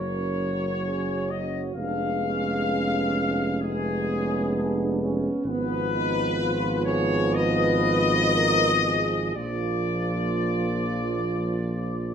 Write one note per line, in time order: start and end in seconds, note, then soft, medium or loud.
0.00 1.71 F#1 medium
0.00 1.72 F#3 medium
0.00 1.71 C#4 medium
0.00 0.78 A#4 medium
0.00 1.29 C#5 medium
0.83 1.28 G#4 medium
1.30 1.77 F#4 medium
1.30 1.61 D#5 medium
1.74 5.28 F1 medium
1.74 3.58 G#3 medium
1.74 3.58 B3 medium
1.74 2.23 D4 medium
1.74 3.58 F5 loud
2.23 3.62 C#4 medium
3.61 5.30 G#3 medium
3.61 5.43 B3 medium
3.61 4.08 B3 medium
3.61 5.00 G#4 medium
4.08 4.53 C#4 medium
4.55 5.01 D4 medium
5.01 5.46 C#4 medium
5.44 9.32 G#1 medium
5.44 9.33 F3 medium
5.44 9.20 B3 medium
5.44 5.93 B3 medium
5.44 6.81 B4 loud
5.94 6.38 D#4 medium
6.40 6.87 F4 medium
6.85 7.34 G#4 medium
6.85 7.34 C#5 loud
7.33 8.33 B4 loud
7.33 9.36 D#5 loud
8.33 8.69 A#4 medium
8.85 9.36 G#4 medium
9.36 12.14 A#1 medium
9.36 12.14 F3 medium
9.36 12.14 A#3 medium
9.36 12.14 F4 medium
9.36 12.14 D5 medium